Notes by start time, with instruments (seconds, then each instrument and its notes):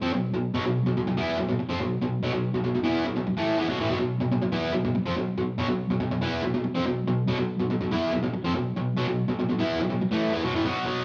0.02 distorted electric guitar F3 C4
0.13 distorted electric guitar B2 F#3
0.34 distorted electric guitar B2 F#3
0.54 distorted electric guitar B2 F#3
0.65 distorted electric guitar B2 F#3
0.86 distorted electric guitar B2 F#3
0.97 distorted electric guitar B2 F#3
1.07 distorted electric guitar B2 F#3
1.17 distorted electric guitar E3 B3 E4
1.39 distorted electric guitar B2 F#3
1.49 distorted electric guitar B2 F#3
1.60 muted distorted electric guitar stroke
1.70 distorted electric guitar F3 C4
1.82 distorted electric guitar B2 F#3
2.02 distorted electric guitar B2 F#3
2.23 distorted electric guitar B2 F#3
2.33 distorted electric guitar B2 F#3
2.54 distorted electric guitar B2 F#3
2.64 distorted electric guitar B2 F#3
2.75 distorted electric guitar B2 F#3
2.84 distorted electric guitar E3 B3 E4
3.06 distorted electric guitar B2 F#3
3.16 distorted electric guitar B2 F#3
3.27 muted distorted electric guitar stroke
3.37 distorted electric guitar A2 E3 A3
3.58 distorted electric guitar E3 B3
3.69 distorted electric guitar B2 F#3
3.79 distorted electric guitar A2 E3
3.90 distorted electric guitar B2 F#3
4.00 distorted electric guitar B2 F#3
4.21 distorted electric guitar B2 F#3
4.32 distorted electric guitar B2 F#3
4.42 distorted electric guitar B2 F#3
4.52 distorted electric guitar E3 B3 E4
4.73 distorted electric guitar B2 F#3
4.85 distorted electric guitar B2 F#3
4.95 muted distorted electric guitar stroke
5.06 distorted electric guitar F3 C4
5.16 distorted electric guitar B2 F#3
5.38 distorted electric guitar B2 F#3
5.58 distorted electric guitar B2 F#3
5.68 distorted electric guitar B2 F#3
5.90 distorted electric guitar B2 F#3
6.00 distorted electric guitar B2 F#3
6.11 distorted electric guitar B2 F#3
6.22 distorted electric guitar E3 B3 E4
6.43 distorted electric guitar B2 F#3
6.54 distorted electric guitar B2 F#3
6.64 muted distorted electric guitar stroke
6.75 distorted electric guitar F3 C4
6.86 distorted electric guitar B2 F#3
7.07 distorted electric guitar B2 F#3
7.28 distorted electric guitar B2 F#3
7.38 distorted electric guitar B2 F#3
7.59 distorted electric guitar B2 F#3
7.70 distorted electric guitar B2 F#3
7.81 distorted electric guitar B2 F#3
7.91 distorted electric guitar E3 B3 E4
8.12 distorted electric guitar B2 F#3
8.23 distorted electric guitar B2 F#3
8.34 muted distorted electric guitar stroke
8.44 distorted electric guitar F3 C4
8.55 distorted electric guitar B2 F#3
8.76 distorted electric guitar B2 F#3
8.97 distorted electric guitar B2 F#3
9.08 distorted electric guitar B2 F#3
9.28 distorted electric guitar B2 F#3
9.40 distorted electric guitar B2 F#3
9.49 distorted electric guitar B2 F#3
9.59 distorted electric guitar E3 B3 E4
9.80 distorted electric guitar B2 F#3
9.90 distorted electric guitar B2 F#3
10.02 muted distorted electric guitar stroke
10.11 distorted electric guitar A2 E3 A3
10.33 distorted electric guitar E3 B3
10.44 distorted electric guitar B2 F#3
10.55 distorted electric guitar A2 E3
10.65 distorted electric guitar B2 F#3 B3
10.86 distorted electric guitar B2 F#3 B3